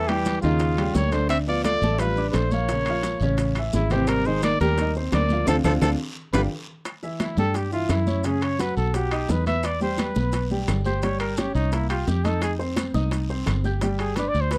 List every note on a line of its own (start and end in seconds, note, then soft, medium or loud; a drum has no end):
0.00 0.38 E2 medium
0.08 0.41 E3 medium
0.08 0.37 G3 medium
0.08 0.41 G4 medium
0.08 0.37 G4 medium
0.08 0.38 G5 medium
0.08 high bongo soft
0.08 high conga soft
0.08 high timbale medium
0.08 claves medium
0.08 maracas soft
0.25 high bongo medium
0.25 high conga medium
0.25 high timbale medium
0.25 short guiro medium
0.25 maracas medium
0.42 0.92 D#2 medium
0.42 0.95 C#3 medium
0.42 0.72 D#3 medium
0.42 0.72 D#4 medium
0.42 0.97 F4 medium
0.42 0.72 D#5 medium
0.42 high conga soft
0.42 short guiro medium
0.42 maracas soft
0.59 high bongo medium
0.59 high conga soft
0.59 high timbale medium
0.59 long guiro medium
0.59 maracas medium
0.77 1.06 G3 medium
0.77 1.07 G4 medium
0.77 1.07 G5 medium
0.77 high bongo soft
0.77 high conga soft
0.77 high timbale medium
0.77 claves medium
0.77 maracas soft
0.94 1.76 D2 medium
0.94 1.12 A#3 medium
0.94 1.14 C#5 medium
0.94 high bongo soft
0.94 low bongo medium
0.94 high conga medium
0.94 low timbale medium
0.94 short guiro medium
0.94 maracas medium
1.11 1.41 D3 medium
1.11 1.28 A3 medium
1.11 1.41 D4 medium
1.11 1.29 C5 medium
1.11 1.42 D5 medium
1.11 high bongo soft
1.11 high conga medium
1.11 high timbale medium
1.11 short guiro medium
1.11 maracas soft
1.29 1.37 C4 medium
1.29 1.38 E5 loud
1.29 high bongo medium
1.29 high conga soft
1.29 high timbale medium
1.29 long guiro medium
1.29 claves medium
1.29 maracas medium
1.47 1.76 F3 medium
1.47 1.64 B3 medium
1.47 1.76 F4 medium
1.47 1.64 D5 medium
1.47 1.76 F5 medium
1.47 high bongo soft
1.47 high conga soft
1.47 maracas soft
1.64 2.00 A3 medium
1.64 2.01 D5 loud
1.64 high bongo medium
1.64 high conga medium
1.64 high timbale medium
1.64 short guiro medium
1.64 claves medium
1.64 maracas medium
1.81 2.30 A1 medium
1.81 1.97 A3 medium
1.81 1.97 A4 medium
1.81 1.97 A5 medium
1.81 high conga medium
1.81 short guiro medium
1.81 maracas soft
1.98 2.14 F3 medium
1.98 2.29 G3 medium
1.98 2.15 F4 medium
1.98 2.29 B4 medium
1.98 2.14 F5 medium
1.98 high bongo medium
1.98 high conga soft
1.98 high timbale medium
1.98 long guiro medium
1.98 maracas medium
2.16 2.46 D4 medium
2.16 2.46 D5 medium
2.16 2.46 D6 medium
2.16 high bongo soft
2.16 high conga soft
2.16 maracas soft
2.30 2.35 G3 medium
2.30 2.53 A3 medium
2.30 2.35 B4 medium
2.30 2.53 C5 medium
2.30 high bongo soft
2.30 low bongo medium
2.30 high timbale medium
2.30 short guiro medium
2.34 3.15 A#1 medium
2.34 high conga soft
2.34 claves medium
2.34 maracas medium
2.51 2.67 F3 medium
2.51 3.29 A#3 medium
2.51 2.67 F4 medium
2.51 3.29 C#5 medium
2.51 2.67 F5 medium
2.51 high bongo soft
2.51 high conga medium
2.51 short guiro medium
2.51 maracas soft
2.68 2.84 C#3 medium
2.68 2.85 C#4 medium
2.68 2.85 C#5 medium
2.68 high bongo medium
2.68 high conga soft
2.68 high timbale medium
2.68 long guiro medium
2.68 maracas medium
2.85 3.16 F3 medium
2.85 3.16 F4 medium
2.85 high bongo soft
2.85 high conga soft
2.85 high timbale medium
2.85 claves medium
2.85 maracas soft
2.90 3.17 F5 medium
3.03 high bongo medium
3.03 high conga medium
3.03 high timbale medium
3.03 short guiro medium
3.03 maracas medium
3.20 3.69 A1 medium
3.20 3.50 C#3 medium
3.20 3.50 C#4 medium
3.20 3.51 C#5 medium
3.20 high conga soft
3.20 short guiro medium
3.20 maracas soft
3.37 high bongo medium
3.37 high conga soft
3.37 high timbale medium
3.37 long guiro medium
3.37 maracas medium
3.55 3.85 E3 medium
3.55 3.85 E4 medium
3.55 3.86 E5 medium
3.55 high bongo soft
3.55 high conga soft
3.55 high timbale medium
3.55 claves medium
3.55 maracas soft
3.73 4.54 G#1 medium
3.73 3.93 C#3 medium
3.73 3.93 E4 medium
3.73 high bongo soft
3.73 low bongo medium
3.73 high conga medium
3.73 short guiro medium
3.73 maracas medium
3.90 4.20 C3 medium
3.90 4.09 E3 medium
3.90 4.20 C4 medium
3.90 4.10 G4 medium
3.90 4.20 C5 medium
3.90 high bongo soft
3.90 high conga medium
3.90 high timbale medium
3.90 short guiro medium
3.90 maracas soft
4.07 4.28 G3 medium
4.07 4.28 A#4 medium
4.07 high bongo medium
4.07 high conga soft
4.07 high timbale medium
4.07 long guiro medium
4.07 claves medium
4.07 maracas medium
4.25 4.54 D#3 medium
4.25 4.43 G#3 medium
4.25 4.54 D#4 medium
4.25 4.43 C5 medium
4.25 4.55 D#5 medium
4.25 high bongo soft
4.25 high conga soft
4.25 maracas soft
4.42 4.59 A#3 medium
4.42 4.59 D5 loud
4.42 high bongo medium
4.42 high conga medium
4.42 high timbale medium
4.42 short guiro medium
4.42 claves medium
4.42 maracas medium
4.60 5.09 D#2 loud
4.60 4.92 G3 medium
4.60 4.75 G3 medium
4.60 4.75 G4 medium
4.60 4.93 A#4 loud
4.60 4.76 G5 medium
4.60 high conga medium
4.60 short guiro medium
4.60 maracas soft
4.78 4.93 D#3 medium
4.78 4.93 D#4 medium
4.78 4.94 D#5 medium
4.78 high bongo medium
4.78 high conga soft
4.78 high timbale medium
4.78 long guiro medium
4.78 maracas medium
4.95 5.24 C4 medium
4.95 5.24 C5 medium
4.95 5.25 C6 medium
4.95 high bongo soft
4.95 high conga soft
4.95 maracas soft
5.12 5.45 D2 medium
5.12 5.45 A#3 medium
5.12 5.45 D5 medium
5.12 high bongo soft
5.12 low bongo medium
5.12 high timbale medium
5.12 low timbale medium
5.12 short guiro medium
5.12 claves medium
5.12 maracas medium
5.29 5.45 F3 medium
5.29 5.46 F4 medium
5.29 5.45 F5 medium
5.29 high bongo soft
5.29 high conga medium
5.29 short guiro medium
5.29 maracas soft
5.47 5.60 D2 medium
5.47 5.56 F3 medium
5.47 5.59 C4 medium
5.47 5.59 D4 medium
5.47 5.59 F4 medium
5.47 5.56 A4 medium
5.47 low bongo loud
5.47 low conga loud
5.47 high timbale medium
5.47 long guiro medium
5.47 claves loud
5.47 maracas loud
5.64 5.77 D2 medium
5.64 5.73 F3 loud
5.64 5.76 C4 medium
5.64 5.76 D4 medium
5.64 5.76 F4 loud
5.64 5.73 A4 medium
5.64 low bongo medium
5.64 low conga loud
5.64 high timbale medium
5.64 long guiro loud
5.64 claves loud
5.64 maracas loud
5.81 5.95 D2 medium
5.81 5.91 F3 medium
5.81 5.93 C4 medium
5.81 5.93 D4 medium
5.81 5.93 F4 medium
5.81 5.90 A4 medium
5.81 low bongo loud
5.81 low conga medium
5.81 high timbale medium
5.81 long guiro loud
5.81 claves loud
5.81 maracas medium
6.33 6.46 G1 medium
6.33 6.42 G3 medium
6.33 6.45 D4 medium
6.33 6.45 F4 medium
6.33 6.45 G4 medium
6.33 6.42 B4 medium
6.33 low bongo medium
6.33 low conga medium
6.33 high timbale medium
6.33 long guiro medium
6.33 claves loud
6.33 maracas loud
6.85 high bongo medium
6.85 high conga soft
6.85 high timbale medium
6.85 long guiro medium
6.85 claves medium
6.85 maracas medium
7.03 7.32 E3 medium
7.03 7.32 E4 medium
7.03 7.32 E5 medium
7.03 high bongo soft
7.03 high conga soft
7.03 maracas soft
7.20 7.37 E4 medium
7.20 high bongo medium
7.20 high conga medium
7.20 high timbale medium
7.20 short guiro medium
7.20 claves medium
7.20 maracas medium
7.37 7.86 G2 medium
7.37 7.66 G3 medium
7.37 7.67 G4 medium
7.37 7.58 A4 medium
7.37 7.67 G5 medium
7.37 high conga medium
7.37 short guiro medium
7.37 maracas soft
7.54 7.72 G4 medium
7.54 high bongo medium
7.54 high conga soft
7.54 high timbale medium
7.54 long guiro medium
7.54 maracas medium
7.72 8.01 E3 medium
7.72 8.01 E4 medium
7.72 7.93 F4 medium
7.72 8.01 E5 medium
7.72 high bongo soft
7.72 high conga soft
7.72 maracas soft
7.89 8.71 F#2 medium
7.89 8.27 E4 medium
7.89 high bongo soft
7.89 low bongo medium
7.89 high conga soft
7.89 high timbale medium
7.89 low timbale medium
7.89 short guiro medium
7.89 claves medium
7.89 maracas medium
8.07 8.21 C#4 medium
8.07 8.22 C#5 medium
8.07 8.22 C#6 medium
8.07 high bongo soft
8.07 high conga medium
8.07 short guiro medium
8.07 maracas soft
8.24 8.53 C#3 medium
8.24 8.53 C#4 medium
8.24 8.44 G#4 medium
8.24 8.53 C#5 medium
8.24 high bongo medium
8.24 high conga soft
8.24 high timbale medium
8.24 long guiro medium
8.24 maracas medium
8.41 8.62 C#5 medium
8.41 high bongo soft
8.41 high conga soft
8.41 high timbale medium
8.41 claves medium
8.41 maracas soft
8.59 8.88 F#3 medium
8.59 8.88 F#4 medium
8.59 8.76 B4 medium
8.59 8.88 F#5 medium
8.59 high bongo medium
8.59 high conga medium
8.59 high timbale medium
8.59 short guiro medium
8.59 maracas medium
8.77 9.26 B1 medium
8.77 8.96 A4 medium
8.77 high conga soft
8.77 short guiro medium
8.77 maracas soft
8.94 9.09 F#3 medium
8.94 9.09 F#4 medium
8.94 9.32 G4 medium
8.94 9.09 F#5 medium
8.94 high bongo medium
8.94 high conga soft
8.94 high timbale medium
8.94 long guiro medium
8.94 maracas medium
9.11 9.40 D#4 medium
9.11 9.40 D#5 medium
9.11 9.41 D#6 medium
9.11 high bongo soft
9.11 high conga soft
9.11 high timbale medium
9.11 claves medium
9.11 maracas soft
9.29 10.11 E2 medium
9.29 9.46 B4 medium
9.29 high bongo soft
9.29 low bongo medium
9.29 high conga medium
9.29 low timbale medium
9.29 short guiro medium
9.29 maracas medium
9.46 9.75 B3 medium
9.46 9.75 B4 medium
9.46 9.67 E5 medium
9.46 9.75 B5 medium
9.46 high bongo soft
9.46 high conga medium
9.46 high timbale medium
9.46 short guiro medium
9.46 maracas soft
9.63 9.82 D5 medium
9.63 high bongo medium
9.63 high conga soft
9.63 high timbale medium
9.63 long guiro medium
9.63 claves medium
9.63 maracas medium
9.80 10.10 G3 medium
9.80 10.10 G4 medium
9.80 10.02 C5 medium
9.80 10.10 G5 medium
9.80 high bongo soft
9.80 high conga soft
9.80 maracas soft
9.98 10.52 B4 medium
9.98 high bongo medium
9.98 high conga medium
9.98 high timbale medium
9.98 short guiro medium
9.98 claves medium
9.98 maracas medium
10.15 10.65 B1 medium
10.15 10.45 B3 medium
10.15 10.45 B4 medium
10.15 10.45 B5 medium
10.15 high conga medium
10.15 short guiro medium
10.15 maracas soft
10.32 high bongo medium
10.32 high conga soft
10.32 high timbale medium
10.32 long guiro medium
10.32 maracas medium
10.50 10.79 G3 medium
10.50 10.80 G4 medium
10.50 10.80 G5 medium
10.50 high bongo soft
10.50 high conga soft
10.50 maracas soft
10.67 11.49 G1 medium
10.67 high bongo soft
10.67 low bongo medium
10.67 high conga soft
10.67 high timbale medium
10.67 low timbale medium
10.67 short guiro medium
10.67 claves medium
10.67 maracas medium
10.85 11.00 G4 medium
10.85 11.05 C5 medium
10.85 11.00 G5 medium
10.85 11.00 G6 medium
10.85 high bongo soft
10.85 high conga medium
10.85 short guiro medium
10.85 maracas soft
11.02 11.32 G3 medium
11.02 11.32 G4 medium
11.02 11.20 C#5 medium
11.02 11.32 G5 medium
11.02 high bongo medium
11.02 high conga soft
11.02 high timbale medium
11.02 long guiro medium
11.02 maracas medium
11.20 11.40 A#4 medium
11.20 high bongo soft
11.20 high conga soft
11.20 high timbale medium
11.20 claves medium
11.20 maracas soft
11.37 11.66 C#4 medium
11.37 11.55 G4 medium
11.37 11.67 C#5 medium
11.37 11.67 C#6 medium
11.37 high bongo medium
11.37 high conga medium
11.37 high timbale medium
11.37 short guiro medium
11.37 maracas medium
11.55 12.04 C2 medium
11.55 11.74 D#4 medium
11.55 high conga soft
11.55 short guiro medium
11.55 maracas soft
11.72 11.87 A#3 medium
11.72 11.89 E4 medium
11.72 11.87 A#4 medium
11.72 11.87 A#5 medium
11.72 high bongo medium
11.72 high conga soft
11.72 high timbale medium
11.72 long guiro medium
11.72 maracas medium
11.90 12.09 F4 medium
11.90 12.18 G4 medium
11.90 12.18 G5 medium
11.90 12.19 G6 medium
11.90 high bongo soft
11.90 high conga soft
11.90 high timbale medium
11.90 claves medium
11.90 maracas soft
12.07 12.89 F2 medium
12.07 12.27 G4 medium
12.07 high bongo soft
12.07 low bongo medium
12.07 high conga medium
12.07 short guiro medium
12.07 maracas medium
12.24 12.53 D#4 medium
12.24 12.43 A4 medium
12.24 12.53 D#5 medium
12.24 12.53 D#6 medium
12.24 high bongo soft
12.24 high conga medium
12.24 high timbale medium
12.24 short guiro medium
12.24 maracas soft
12.42 12.53 G#4 medium
12.42 high bongo medium
12.42 high conga soft
12.42 high timbale medium
12.42 long guiro medium
12.42 claves medium
12.42 maracas medium
12.59 12.88 C4 medium
12.59 12.88 C5 medium
12.59 12.88 C6 medium
12.59 high bongo soft
12.59 high conga soft
12.59 maracas soft
12.76 high bongo medium
12.76 high conga medium
12.76 high timbale medium
12.76 short guiro medium
12.76 claves medium
12.76 maracas medium
12.94 13.43 C2 medium
12.94 13.23 D#4 medium
12.94 13.23 D#5 medium
12.94 13.23 D#6 medium
12.94 high conga medium
12.94 short guiro medium
12.94 maracas soft
13.11 high bongo medium
13.11 high conga soft
13.11 high timbale medium
13.11 long guiro medium
13.11 maracas medium
13.29 13.58 C4 medium
13.29 13.58 C5 medium
13.29 13.59 C6 medium
13.29 high bongo soft
13.29 high conga soft
13.29 maracas soft
13.46 14.28 G1 medium
13.46 high bongo soft
13.46 low bongo medium
13.46 high conga soft
13.46 high timbale medium
13.46 low timbale medium
13.46 short guiro medium
13.46 claves medium
13.46 maracas medium
13.64 13.79 G4 medium
13.64 13.79 G5 medium
13.64 13.79 G6 medium
13.64 high bongo soft
13.64 high conga medium
13.64 short guiro medium
13.64 maracas soft
13.81 14.11 G3 medium
13.81 14.11 G4 medium
13.81 14.11 G5 medium
13.81 high bongo medium
13.81 high conga soft
13.81 high timbale medium
13.81 long guiro medium
13.81 maracas medium
13.99 14.18 G#4 medium
13.99 high bongo soft
13.99 high conga soft
13.99 high timbale medium
13.99 claves medium
13.99 maracas soft
14.16 14.46 D4 medium
14.16 14.30 B4 medium
14.16 14.46 D5 medium
14.16 14.47 D6 medium
14.16 high bongo medium
14.16 high conga soft
14.16 high timbale medium
14.16 short guiro medium
14.16 maracas medium
14.28 14.42 D5 loud
14.34 14.58 D2 medium
14.34 high conga soft
14.34 short guiro medium
14.34 maracas soft
14.41 14.54 C5 medium
14.51 14.58 B3 medium
14.51 14.58 B4 medium
14.51 14.58 B5 medium
14.51 high bongo medium
14.51 high conga soft
14.51 high timbale medium
14.51 long guiro medium
14.51 maracas medium